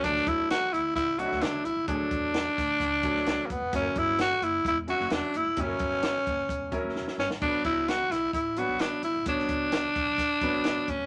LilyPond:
<<
  \new Staff \with { instrumentName = "Tenor saxophone" } { \time 4/4 \key d \major \tempo 4 = 130 d'8 e'8 fis'8 e'8 e'8 fis'8 d'8 e'8 | d'2.~ d'16. bes32 b8 | cis'8 e'8 fis'8 e'8 e'8 fis'8 d'8 e'8 | cis'2~ cis'8.~ cis'32 r8 r32 cis'8 |
d'8 e'8 fis'8 e'8 e'8 fis'8 d'8 e'8 | d'2.~ d'8 cis'8 | }
  \new Staff \with { instrumentName = "Grand piano" } { \time 4/4 \key d \major <e fis a d' a'>4~ <e fis a d' a'>16 r4 r16 <fis a d' ees' e'>4 r8 | <fis a d' gis' a'>4~ <fis a d' gis' a'>16 r4 r16 <fis a d' a'>4 r8 | <fis cis' e' a' ais'>4~ <fis cis' e' a' ais'>16 r4 r16 <fis cis' e' fis'>4 r8 | <fis cis' e' g' ais'>4~ <fis cis' e' g' ais'>16 r4 r16 <fis cis' e' ais'>4 r8 |
<fis b d' a' b'>4~ <fis b d' a' b'>16 r4 r16 <fis b d' b'>4 r8 | <fis b d' cis''>4~ <fis b d' cis''>16 r4 r16 <fis b cis' d' b'>4 r8 | }
  \new Staff \with { instrumentName = "Upright bass" } { \clef bass \time 4/4 \key d \major d,8 e,4 d,8 cis,8. d,16 cis,16 r16 b,,16 cis,16 | d,8 e,4 d,8 cis,8. d,16 cis,16 r16 fis,,16 e,,16 | fis,,8 g,,4 fis,,8 e,,8. fis,,16 e,,16 r16 fis,,16 e,,16 | fis,,8 g,,4 fis,,8 e,,8. fis,,16 e,,16 r16 g,,16 ais,,16 |
b,,8 cis,4 b,,8 a,,8. b,,16 a,,16 r16 g,,16 a,,16 | b,,8 cis,4 b,,8. r16 a,,16 b,,16 a,,16 r16 fis,,16 e,,16 | }
  \new DrumStaff \with { instrumentName = "Drums" } \drummode { \time 4/4 <hh bd>16 sn16 <hh bd>8 <hh sn>8 hh8 <hh bd>8 hh16 sn16 <hh sn>8 hh8 | <hh bd>8 <hh bd>8 <hh sn>8 <hh bd sn>8 <hh bd>8 <hh bd>16 sn16 <hh sn>8 <hh bd>8 | <hh bd>8 <hh bd>8 <hh sn>8 hh8 <hh bd>8 hh16 sn16 <hh sn>8 hh8 | <hh bd>8 <hh bd>8 <hh sn>8 <hh bd>8 <hh bd>8 <hh bd>8 sn16 sn16 sn16 sn16 |
<cymc bd>8 <hh bd>8 <hh sn>8 <hh sn>8 <hh bd>8 hh8 <hh sn>8 hh8 | <hh bd>16 sn16 <hh bd>8 <hh sn>8 <hh bd>8 <hh bd>8 <hh bd>8 <hh sn>8 <hh bd>8 | }
>>